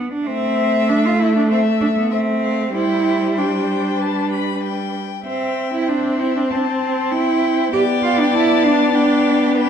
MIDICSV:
0, 0, Header, 1, 5, 480
1, 0, Start_track
1, 0, Tempo, 615385
1, 211, Time_signature, 4, 2, 24, 8
1, 1651, Tempo, 627615
1, 4531, Tempo, 610998
1, 7525, End_track
2, 0, Start_track
2, 0, Title_t, "Violin"
2, 0, Program_c, 0, 40
2, 215, Note_on_c, 0, 76, 63
2, 1143, Note_off_c, 0, 76, 0
2, 1178, Note_on_c, 0, 76, 60
2, 1641, Note_off_c, 0, 76, 0
2, 1645, Note_on_c, 0, 76, 60
2, 1707, Note_off_c, 0, 76, 0
2, 1884, Note_on_c, 0, 77, 51
2, 2123, Note_off_c, 0, 77, 0
2, 2133, Note_on_c, 0, 79, 58
2, 2603, Note_off_c, 0, 79, 0
2, 2608, Note_on_c, 0, 79, 62
2, 3101, Note_on_c, 0, 81, 63
2, 3113, Note_off_c, 0, 79, 0
2, 3327, Note_off_c, 0, 81, 0
2, 3332, Note_on_c, 0, 83, 63
2, 3568, Note_off_c, 0, 83, 0
2, 3577, Note_on_c, 0, 79, 59
2, 4047, Note_off_c, 0, 79, 0
2, 4061, Note_on_c, 0, 79, 58
2, 4531, Note_on_c, 0, 76, 57
2, 4542, Note_off_c, 0, 79, 0
2, 5025, Note_on_c, 0, 81, 55
2, 5037, Note_off_c, 0, 76, 0
2, 5494, Note_on_c, 0, 79, 63
2, 5505, Note_off_c, 0, 81, 0
2, 5974, Note_off_c, 0, 79, 0
2, 5978, Note_on_c, 0, 79, 75
2, 6459, Note_on_c, 0, 81, 79
2, 6471, Note_off_c, 0, 79, 0
2, 6935, Note_on_c, 0, 79, 72
2, 6947, Note_off_c, 0, 81, 0
2, 7410, Note_off_c, 0, 79, 0
2, 7415, Note_on_c, 0, 79, 90
2, 7525, Note_off_c, 0, 79, 0
2, 7525, End_track
3, 0, Start_track
3, 0, Title_t, "Violin"
3, 0, Program_c, 1, 40
3, 212, Note_on_c, 1, 76, 76
3, 1142, Note_off_c, 1, 76, 0
3, 1180, Note_on_c, 1, 76, 62
3, 1644, Note_off_c, 1, 76, 0
3, 1652, Note_on_c, 1, 76, 61
3, 2122, Note_off_c, 1, 76, 0
3, 2130, Note_on_c, 1, 72, 63
3, 2600, Note_off_c, 1, 72, 0
3, 2605, Note_on_c, 1, 72, 62
3, 3090, Note_on_c, 1, 71, 57
3, 3102, Note_off_c, 1, 72, 0
3, 3898, Note_off_c, 1, 71, 0
3, 4045, Note_on_c, 1, 76, 61
3, 4494, Note_off_c, 1, 76, 0
3, 4534, Note_on_c, 1, 72, 61
3, 5951, Note_off_c, 1, 72, 0
3, 5988, Note_on_c, 1, 74, 91
3, 7414, Note_on_c, 1, 71, 76
3, 7426, Note_off_c, 1, 74, 0
3, 7525, Note_off_c, 1, 71, 0
3, 7525, End_track
4, 0, Start_track
4, 0, Title_t, "Cello"
4, 0, Program_c, 2, 42
4, 0, Note_on_c, 2, 59, 75
4, 88, Note_off_c, 2, 59, 0
4, 96, Note_on_c, 2, 62, 76
4, 206, Note_on_c, 2, 60, 92
4, 218, Note_off_c, 2, 62, 0
4, 692, Note_on_c, 2, 62, 92
4, 704, Note_off_c, 2, 60, 0
4, 820, Note_on_c, 2, 65, 85
4, 832, Note_off_c, 2, 62, 0
4, 934, Note_on_c, 2, 64, 85
4, 946, Note_off_c, 2, 65, 0
4, 1053, Note_off_c, 2, 64, 0
4, 1062, Note_on_c, 2, 62, 65
4, 1171, Note_off_c, 2, 62, 0
4, 1176, Note_on_c, 2, 60, 76
4, 1238, Note_off_c, 2, 60, 0
4, 1411, Note_on_c, 2, 62, 83
4, 1459, Note_off_c, 2, 62, 0
4, 1540, Note_on_c, 2, 59, 72
4, 1652, Note_on_c, 2, 60, 81
4, 1664, Note_off_c, 2, 59, 0
4, 2126, Note_off_c, 2, 60, 0
4, 2130, Note_on_c, 2, 64, 90
4, 2613, Note_on_c, 2, 62, 68
4, 2624, Note_off_c, 2, 64, 0
4, 3813, Note_off_c, 2, 62, 0
4, 4053, Note_on_c, 2, 60, 77
4, 4386, Note_off_c, 2, 60, 0
4, 4416, Note_on_c, 2, 64, 78
4, 4531, Note_on_c, 2, 62, 73
4, 4543, Note_off_c, 2, 64, 0
4, 4775, Note_on_c, 2, 64, 72
4, 4787, Note_off_c, 2, 62, 0
4, 4895, Note_off_c, 2, 64, 0
4, 4905, Note_on_c, 2, 62, 64
4, 4951, Note_off_c, 2, 62, 0
4, 5020, Note_on_c, 2, 60, 77
4, 5069, Note_on_c, 2, 62, 62
4, 5081, Note_off_c, 2, 60, 0
4, 5123, Note_on_c, 2, 60, 82
4, 5135, Note_off_c, 2, 62, 0
4, 5496, Note_on_c, 2, 64, 93
4, 5508, Note_off_c, 2, 60, 0
4, 5972, Note_off_c, 2, 64, 0
4, 5977, Note_on_c, 2, 67, 100
4, 6040, Note_off_c, 2, 67, 0
4, 6215, Note_on_c, 2, 65, 90
4, 6344, Note_on_c, 2, 62, 101
4, 6356, Note_off_c, 2, 65, 0
4, 6450, Note_off_c, 2, 62, 0
4, 6455, Note_on_c, 2, 64, 106
4, 6694, Note_on_c, 2, 62, 98
4, 6706, Note_off_c, 2, 64, 0
4, 6928, Note_off_c, 2, 62, 0
4, 6933, Note_on_c, 2, 62, 99
4, 7518, Note_off_c, 2, 62, 0
4, 7525, End_track
5, 0, Start_track
5, 0, Title_t, "Viola"
5, 0, Program_c, 3, 41
5, 216, Note_on_c, 3, 57, 77
5, 2102, Note_off_c, 3, 57, 0
5, 2128, Note_on_c, 3, 55, 64
5, 3869, Note_off_c, 3, 55, 0
5, 4048, Note_on_c, 3, 60, 66
5, 5943, Note_off_c, 3, 60, 0
5, 5974, Note_on_c, 3, 59, 78
5, 7525, Note_off_c, 3, 59, 0
5, 7525, End_track
0, 0, End_of_file